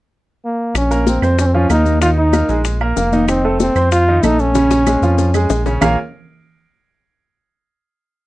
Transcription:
0.45 trombone A#3
0.75 analog synth bass A#1, trombone C#4, high bongo, high conga, claves, maracas
0.91 grand piano A#3 A#4, high bongo, high conga, maracas
1.07 trombone C4, high bongo, high conga, maracas
1.22 analog synth bass F2, grand piano C4 C5, high bongo, high conga, claves, maracas
1.39 trombone C#4, high bongo, high conga, maracas
1.46 trombone C4
1.54 grand piano F3 F4, trombone C#4, high bongo, high conga
1.70 analog synth bass D#2, grand piano A#3 A#4, trombone D#4, high bongo, low bongo, high conga, claves, maracas
1.86 high conga, maracas
2.01 grand piano D#3 D#4, trombone F4, high bongo, high conga, maracas
2.17 trombone D#4, high bongo, high conga
2.33 grand piano A#3 A#4, high bongo, high conga, claves, maracas
2.49 analog synth bass A#1, grand piano G#3 G#4, high bongo, high conga, maracas
2.65 high bongo, high conga, maracas
2.81 grand piano A#3 A#4, high bongo, high conga, claves
2.97 analog synth bass F1, trombone A#3, high bongo, low bongo, high conga, maracas
3.12 grand piano D#3 D#4, high conga, maracas
3.28 trombone C4, high bongo, claves, maracas
3.44 grand piano A3 A4, high bongo, high conga
3.60 trombone C4, high bongo, high conga, maracas
3.75 analog synth bass F2, grand piano C4 C5, high bongo, high conga, claves, maracas
3.92 trombone F4, high bongo, high conga, maracas
4.07 grand piano D#3 D#4, high bongo, high conga
4.23 analog synth bass A#1, grand piano A3 A4, trombone D#4, high bongo, low bongo, high conga, claves, maracas
4.39 trombone C#4, high conga, maracas
4.55 grand piano C#3 C#4, high bongo, high conga, maracas
4.71 high bongo, high conga, maracas
4.87 grand piano G#3 G#4, high bongo, high conga, claves, maracas
5.02 analog synth bass F2, grand piano F3 F4, high conga, maracas
5.18 low bongo, high conga, maracas
5.34 grand piano G#3 G#4, low bongo, high conga, claves, maracas
5.50 analog synth bass A#1, low bongo, high conga, maracas
5.66 grand piano C#3 C#4, low bongo, maracas
5.81 analog synth bass A#1, grand piano A#3 F4 G#4 A#4 C#5 F5, trombone A#3, low bongo, low conga, claves, maracas

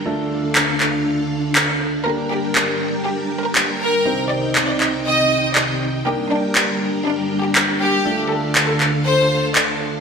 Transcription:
0.05 string machine D3 D4 A4 F5, grand piano A3 D4 F4 A4
0.55 clap
0.80 clap
1.55 clap
2.05 string machine G3 A#4 G5, grand piano A#3 D4 G4 A#4, violin section A#4
2.30 violin section G4
2.55 clap
3.05 violin section G4
3.43 violin section A#4
3.55 clap
3.80 violin section A#4
4.05 string machine C3 C4 D#4, grand piano C4 D#4 G4 C5
4.30 violin section D5
4.55 clap
4.68 violin section D5
4.80 clap
5.05 violin section D#5
5.55 violin section D5, clap
6.05 string machine G3 D4 A#4, grand piano A#3 D4 G4 A#4, violin section G4
6.30 violin section D4
6.55 clap
7.05 violin section D4
7.43 violin section G4
7.55 clap
7.80 violin section G4
8.05 string machine D3 A4 F5, grand piano A3 D4 F4 A4
8.30 violin section A4
8.55 clap
8.68 violin section A4
8.80 clap
9.05 violin section C5
9.55 violin section D5, clap

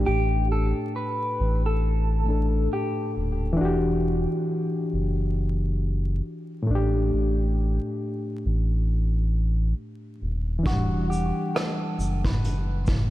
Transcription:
Already playing: reed electric piano A2 A3 D4 G4
0.06 sub bass A1, clean electric guitar G4
0.52 clean electric guitar A4
0.96 clean electric guitar B4
1.40 sub bass A1
1.66 clean electric guitar A4
2.24 reed electric piano A2 A3
2.28 reed electric piano D4 A4
2.73 clean electric guitar G4
3.17 sub bass D#1
3.53 reed electric piano E3 D4
3.61 sub bass E1, reed electric piano F#4
3.65 reed electric piano G4
4.93 sub bass F#1
6.62 reed electric piano A2
6.67 sub bass A1, reed electric piano A3
6.71 reed electric piano D4
6.75 reed electric piano G4
7.13 sub bass A1
8.45 sub bass A1
10.22 sub bass D#1
10.59 reed electric piano E3
10.63 sub bass E1, reed electric piano D4, clean electric guitar F#4, kick, closed hi-hat
10.68 reed electric piano F#5
10.72 reed electric piano G3
11.10 clean electric guitar G4, shaker
11.55 clean electric guitar A4, cross-stick, closed hi-hat
11.98 sub bass F#1, shaker
12.25 clean electric guitar B4, kick
12.45 closed hi-hat
12.87 kick, closed hi-hat, shaker

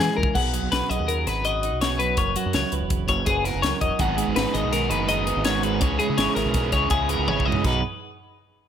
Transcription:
Already playing: overdriven electric guitar E3 G#3 C#4 E4
0.00 clean electric guitar G#4
0.17 fingered electric bass C#2, clean electric guitar A#4
0.23 kick
0.35 fingered electric bass B1, clean electric guitar B2 G#4 F#5, kick, crash
0.54 clean electric guitar F#3, closed hi-hat
0.63 fingered electric bass B1
0.72 fingered electric bass B1, clean electric guitar F#4 B4, snare, closed hi-hat
0.90 fingered electric bass B1, clean electric guitar G#4 D#5, closed hi-hat
0.99 fingered electric bass D#2
1.08 clean electric guitar F#2 A#4, closed hi-hat
1.26 fingered electric bass G#1, clean electric guitar F#4 B4, snare, closed hi-hat
1.45 clean electric guitar F#4 D#5, closed hi-hat
1.63 clean electric guitar D#4, closed hi-hat
1.72 fingered electric bass B1
1.81 clean electric guitar B2 F#4 C#5, snare, closed hi-hat
1.91 clean electric guitar G#4
1.99 clean electric guitar F#3 B4, closed hi-hat
2.17 fingered electric bass F#1, clean electric guitar F#2 A#4 C#5, kick, closed hi-hat
2.36 clean electric guitar F#3 F#4, closed hi-hat
2.46 fingered electric bass F#2
2.53 fingered electric bass C#2, clean electric guitar E4 C#5, snare, closed hi-hat
2.72 fingered electric bass C#2, clean electric guitar B4, closed hi-hat
2.81 fingered electric bass E1
2.89 clean electric guitar C#3, kick, closed hi-hat
3.08 fingered electric bass F#1, clean electric guitar E4 C#5, kick, closed hi-hat
3.26 fingered electric bass F#1, clean electric guitar G#4 B4, kick, closed hi-hat
3.45 clean electric guitar B3 A#4, snare, closed hi-hat
3.54 fingered electric bass F#1, clean electric guitar C#4
3.62 fingered electric bass C#2, clean electric guitar F#2 A#4 C#5, snare, closed hi-hat
3.81 fingered electric bass E1, clean electric guitar F#3 D#5, kick, closed hi-hat
3.99 fingered electric bass G#1, overdriven electric guitar G#2 D#3 G#3 B3 D#4 G#4, clean electric guitar G#2 F#4 F#5, kick, closed hi-hat
4.09 clean electric guitar G#4
4.17 clean electric guitar G#3, overdriven electric guitar G#3 B3 D#4 G#4, closed hi-hat
4.28 fingered electric bass G#1
4.35 fingered electric bass G#1, overdriven electric guitar G#2 D#3 G#3 B3 D#4 G#4, clean electric guitar F#4 B4, snare, closed hi-hat
4.53 fingered electric bass G#1, overdriven electric guitar G#3 B3 D#4 G#4, clean electric guitar G#4 D#5, closed hi-hat
4.64 fingered electric bass B1
4.71 clean electric guitar D#3 A#4, overdriven electric guitar G#3 B3 D#4 G#4, snare, closed hi-hat
4.90 fingered electric bass F#1, overdriven electric guitar G#2 D#3 G#3 B3 D#4 G#4, clean electric guitar F#4 B4, closed hi-hat
5.08 overdriven electric guitar G#3 B3 D#4 G#4, clean electric guitar B4 D#5, closed hi-hat
5.27 overdriven electric guitar G#3 B3 D#4 G#4, clean electric guitar B3, closed hi-hat
5.37 fingered electric bass G#1
5.44 overdriven electric guitar G#2 D#3 G#3 B3 D#4 G#4, clean electric guitar G#2 F#4 C#5, snare, closed hi-hat
5.63 clean electric guitar G#3 B4, overdriven electric guitar G#3 B3 D#4 G#4, closed hi-hat
5.81 fingered electric bass C#2, overdriven electric guitar C#3 G#3 C#4 E4 G#4, clean electric guitar C#3 G#4 C#5, kick, closed hi-hat
5.99 clean electric guitar G#3 G#4, overdriven electric guitar C#4 E4 G#4, closed hi-hat
6.10 fingered electric bass C#3
6.18 fingered electric bass G#1, overdriven electric guitar C#3 G#3 C#4 E4 G#4, clean electric guitar E4 C#5, snare, closed hi-hat
6.35 fingered electric bass G#1, overdriven electric guitar C#4 E4 G#4, clean electric guitar G#4 A#4, snare, closed hi-hat
6.46 fingered electric bass B1
6.54 clean electric guitar G#2, overdriven electric guitar G#3 C#4 E4 G#4, kick, snare, closed hi-hat
6.72 fingered electric bass C#2, overdriven electric guitar C#3 G#3 C#4 E4 G#4, clean electric guitar E4 C#5, kick, closed hi-hat
6.90 fingered electric bass C#2, overdriven electric guitar G#3 C#4 E4 G#4, clean electric guitar G#4, kick, closed hi-hat
7.09 clean electric guitar B3 A#4, overdriven electric guitar C#4 E4 G#4, closed hi-hat
7.19 fingered electric bass C#2
7.27 fingered electric bass G#1, clean electric guitar C#3 G#4 C#5, overdriven electric guitar C#3 G#3 C#4 E4 G#4, high tom
7.40 kick
7.46 fingered electric bass B1, clean electric guitar G#3 D#5, overdriven electric guitar C#4 E4 G#4
7.52 floor tom
7.64 fingered electric bass B1, overdriven electric guitar B2 F#3 B3 D#4, clean electric guitar B2 F#3 D#4 F#4 B4, kick, crash
7.68 clean electric guitar G#4

